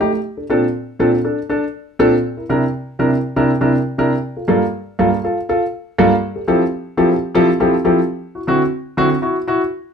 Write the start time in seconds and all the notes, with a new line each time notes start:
0.00 A3 D#4 G4
0.13 D#4 G4
0.37 D4 A4
0.50 A#2 C4 D4 A4
0.99 A#2 C4 D4 A4
1.12 D4 A4
1.24 D4 A4
1.49 D4 A4
1.99 A#2 C4 D4 A4
2.37 E4 A#4
2.49 C3 D4 E4 A#4
2.99 C3 D4 E4 A#4
3.11 E4 A#4
3.36 C3 D4 E4 A#4
3.61 C3 D4 E4 A#4
3.73 E4 A#4
3.98 C3 D4 E4 A#4
4.37 F4 A4
4.48 G2 A#3 F4 A4
4.99 G2 A#3 F4 A4
5.11 F4 A4
5.24 F4 A4
5.49 F4 A4
5.98 G2 A#3 F4 A4
6.36 G4 A4
6.48 F3 C4 E4 G4 A4
6.97 F3 C4 E4 G4 A4
7.10 G4 A4
7.35 F3 C4 E4 G4 A4
7.60 F3 C4 E4 G4 A4
7.85 F3 C4 E4 G4 A4
8.35 E4 F#4
8.47 D3 C4 E4 F#4
8.97 D3 C4 E4 F#4
9.10 E4 F#4
9.22 E4 F#4
9.48 E4 F#4